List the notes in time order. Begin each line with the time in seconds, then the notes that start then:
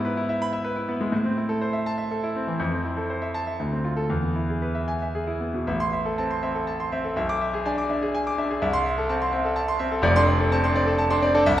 Already playing: G#2 B3 E4
0.05 B4
0.17 E4
0.29 E5
0.42 B5
0.53 E5
0.65 B4
0.76 E4
0.89 B3
1.01 G#3
1.12 A2
1.24 C4
1.37 E4
1.49 A4
1.61 C5
1.73 E5
1.86 A5
1.98 E5
2.11 A4
2.23 E4
2.36 C4
2.47 E3
2.60 F2
2.72 C4
2.85 E4
2.97 A4
3.10 C5
3.22 E5
3.34 A5
3.47 E5
3.59 D2
3.72 C4
3.85 F4
3.97 A4
4.10 E2
4.23 B3
4.36 E4
4.49 G#4
4.62 B4
4.75 E5
4.88 G#5
5.02 E5
5.15 G#4
5.27 E4
5.40 B3
5.54 B2
5.67 A1 E5
5.80 C6
5.93 E5
6.05 A4
6.18 C4 A5
6.31 C6
6.43 C4 E5
6.55 A4
6.67 A5
6.80 C6
6.92 C4 E5
7.04 A4
7.16 B1 E5
7.29 D6
7.41 E5
7.54 G#4
7.66 D4 G#5
7.78 D6
7.90 D4 E5
8.02 G#4
8.15 G#5
8.27 D6
8.38 D4 E5
8.50 G#4
8.62 C2 E5
8.73 C6
8.86 E5
8.98 A4
9.09 C4 A5
9.22 C6
9.33 C4 E5
9.45 A4
9.56 A5
9.68 C6
9.79 C4 E5
9.92 A4
10.02 F1 F2 D5
10.16 D4 C6
10.27 D5
10.40 A4
10.52 C4 A5
10.64 D4 C6
10.76 C4 D5
10.86 A4
10.98 A5
11.10 D4 C6
11.22 C4 D5
11.34 D4 A4
11.46 C2 E5